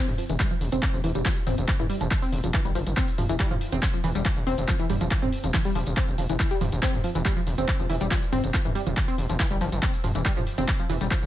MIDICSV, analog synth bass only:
0, 0, Header, 1, 2, 480
1, 0, Start_track
1, 0, Tempo, 428571
1, 1403, Time_signature, 4, 2, 24, 8
1, 12612, End_track
2, 0, Start_track
2, 0, Title_t, "Analog synth bass"
2, 0, Program_c, 0, 38
2, 90, Note_on_c, 0, 28, 81
2, 175, Note_off_c, 0, 28, 0
2, 330, Note_on_c, 0, 28, 85
2, 415, Note_off_c, 0, 28, 0
2, 683, Note_on_c, 0, 28, 95
2, 778, Note_off_c, 0, 28, 0
2, 810, Note_on_c, 0, 28, 83
2, 895, Note_off_c, 0, 28, 0
2, 1050, Note_on_c, 0, 28, 78
2, 1135, Note_off_c, 0, 28, 0
2, 1164, Note_on_c, 0, 28, 96
2, 1259, Note_off_c, 0, 28, 0
2, 1290, Note_on_c, 0, 28, 81
2, 1375, Note_off_c, 0, 28, 0
2, 1644, Note_on_c, 0, 28, 96
2, 1739, Note_off_c, 0, 28, 0
2, 1770, Note_on_c, 0, 28, 81
2, 1855, Note_off_c, 0, 28, 0
2, 2010, Note_on_c, 0, 28, 80
2, 2095, Note_off_c, 0, 28, 0
2, 2250, Note_on_c, 0, 28, 83
2, 2336, Note_off_c, 0, 28, 0
2, 2604, Note_on_c, 0, 28, 96
2, 2699, Note_off_c, 0, 28, 0
2, 2730, Note_on_c, 0, 28, 82
2, 2816, Note_off_c, 0, 28, 0
2, 2970, Note_on_c, 0, 31, 81
2, 3055, Note_off_c, 0, 31, 0
2, 3084, Note_on_c, 0, 31, 91
2, 3179, Note_off_c, 0, 31, 0
2, 3210, Note_on_c, 0, 31, 84
2, 3295, Note_off_c, 0, 31, 0
2, 3563, Note_on_c, 0, 28, 95
2, 3658, Note_off_c, 0, 28, 0
2, 3691, Note_on_c, 0, 28, 79
2, 3776, Note_off_c, 0, 28, 0
2, 3931, Note_on_c, 0, 28, 81
2, 4016, Note_off_c, 0, 28, 0
2, 4170, Note_on_c, 0, 28, 86
2, 4255, Note_off_c, 0, 28, 0
2, 4523, Note_on_c, 0, 28, 93
2, 4619, Note_off_c, 0, 28, 0
2, 4650, Note_on_c, 0, 28, 83
2, 4735, Note_off_c, 0, 28, 0
2, 4890, Note_on_c, 0, 28, 79
2, 4975, Note_off_c, 0, 28, 0
2, 5003, Note_on_c, 0, 28, 95
2, 5098, Note_off_c, 0, 28, 0
2, 5130, Note_on_c, 0, 28, 82
2, 5215, Note_off_c, 0, 28, 0
2, 5484, Note_on_c, 0, 28, 98
2, 5579, Note_off_c, 0, 28, 0
2, 5610, Note_on_c, 0, 28, 81
2, 5695, Note_off_c, 0, 28, 0
2, 5850, Note_on_c, 0, 28, 81
2, 5935, Note_off_c, 0, 28, 0
2, 6090, Note_on_c, 0, 28, 84
2, 6175, Note_off_c, 0, 28, 0
2, 6444, Note_on_c, 0, 28, 97
2, 6539, Note_off_c, 0, 28, 0
2, 6571, Note_on_c, 0, 28, 81
2, 6656, Note_off_c, 0, 28, 0
2, 6811, Note_on_c, 0, 28, 79
2, 6896, Note_off_c, 0, 28, 0
2, 6925, Note_on_c, 0, 28, 96
2, 7019, Note_off_c, 0, 28, 0
2, 7051, Note_on_c, 0, 28, 81
2, 7136, Note_off_c, 0, 28, 0
2, 7404, Note_on_c, 0, 28, 95
2, 7499, Note_off_c, 0, 28, 0
2, 7531, Note_on_c, 0, 28, 80
2, 7616, Note_off_c, 0, 28, 0
2, 7771, Note_on_c, 0, 28, 77
2, 7856, Note_off_c, 0, 28, 0
2, 8010, Note_on_c, 0, 28, 84
2, 8096, Note_off_c, 0, 28, 0
2, 8364, Note_on_c, 0, 28, 95
2, 8459, Note_off_c, 0, 28, 0
2, 8491, Note_on_c, 0, 28, 84
2, 8576, Note_off_c, 0, 28, 0
2, 8731, Note_on_c, 0, 28, 76
2, 8816, Note_off_c, 0, 28, 0
2, 8844, Note_on_c, 0, 28, 97
2, 8939, Note_off_c, 0, 28, 0
2, 8970, Note_on_c, 0, 28, 83
2, 9056, Note_off_c, 0, 28, 0
2, 9324, Note_on_c, 0, 28, 98
2, 9419, Note_off_c, 0, 28, 0
2, 9450, Note_on_c, 0, 28, 81
2, 9536, Note_off_c, 0, 28, 0
2, 9690, Note_on_c, 0, 28, 80
2, 9776, Note_off_c, 0, 28, 0
2, 9931, Note_on_c, 0, 28, 86
2, 10016, Note_off_c, 0, 28, 0
2, 10283, Note_on_c, 0, 28, 96
2, 10378, Note_off_c, 0, 28, 0
2, 10410, Note_on_c, 0, 28, 84
2, 10496, Note_off_c, 0, 28, 0
2, 10650, Note_on_c, 0, 31, 80
2, 10735, Note_off_c, 0, 31, 0
2, 10763, Note_on_c, 0, 31, 94
2, 10858, Note_off_c, 0, 31, 0
2, 10890, Note_on_c, 0, 31, 80
2, 10975, Note_off_c, 0, 31, 0
2, 11243, Note_on_c, 0, 28, 94
2, 11339, Note_off_c, 0, 28, 0
2, 11369, Note_on_c, 0, 28, 82
2, 11455, Note_off_c, 0, 28, 0
2, 11610, Note_on_c, 0, 28, 79
2, 11695, Note_off_c, 0, 28, 0
2, 11849, Note_on_c, 0, 28, 84
2, 11935, Note_off_c, 0, 28, 0
2, 12203, Note_on_c, 0, 28, 96
2, 12299, Note_off_c, 0, 28, 0
2, 12330, Note_on_c, 0, 28, 85
2, 12415, Note_off_c, 0, 28, 0
2, 12570, Note_on_c, 0, 28, 78
2, 12612, Note_off_c, 0, 28, 0
2, 12612, End_track
0, 0, End_of_file